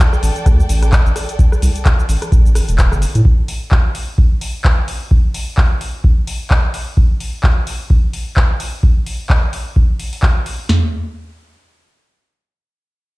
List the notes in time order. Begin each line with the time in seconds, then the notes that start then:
Already playing: A4 D5 G5
0.00 kick, cabasa
0.13 cross-stick, cabasa
0.23 A1, open hi-hat, cabasa
0.36 closed hi-hat, cabasa
0.46 D2, kick, cross-stick, closed hi-hat, cabasa
0.60 cabasa
0.69 A1, open hi-hat, cabasa
0.83 cross-stick, closed hi-hat, cabasa
0.92 kick, clap, closed hi-hat, cabasa
1.06 A1, cabasa
1.16 cross-stick, open hi-hat, cabasa
1.29 closed hi-hat, cabasa
1.39 kick, closed hi-hat, cabasa
1.52 cross-stick, cabasa
1.62 C2, open hi-hat, cabasa
1.76 closed hi-hat, cabasa
1.85 kick, cross-stick, clap, closed hi-hat, cabasa
1.99 cabasa
2.09 A1, open hi-hat, cabasa
2.22 cross-stick, closed hi-hat, cabasa
2.32 A1, kick, closed hi-hat, cabasa
2.46 cabasa
2.55 cross-stick, open hi-hat, cabasa
2.69 E1, closed hi-hat, cabasa
2.78 kick, clap, closed hi-hat, cabasa
2.92 G1, cross-stick, cabasa
3.02 open hi-hat, cabasa
3.15 A2, closed hi-hat, cabasa
3.25 kick
3.48 open hi-hat
3.71 kick, clap
3.95 open hi-hat
4.18 kick
4.41 open hi-hat
4.64 kick, clap
4.88 open hi-hat
5.11 kick
5.34 open hi-hat
5.58 kick, clap
5.81 open hi-hat
6.04 kick
6.27 open hi-hat
6.51 kick, clap
6.74 open hi-hat
6.97 kick
7.20 open hi-hat
7.44 kick, clap
7.67 open hi-hat
7.90 kick
8.13 open hi-hat
8.37 kick, clap
8.60 open hi-hat
8.83 kick
9.06 open hi-hat
9.30 kick, clap
9.53 open hi-hat
9.76 kick
9.99 open hi-hat
10.13 open hi-hat
10.23 kick, clap
10.46 open hi-hat
10.69 snare, floor tom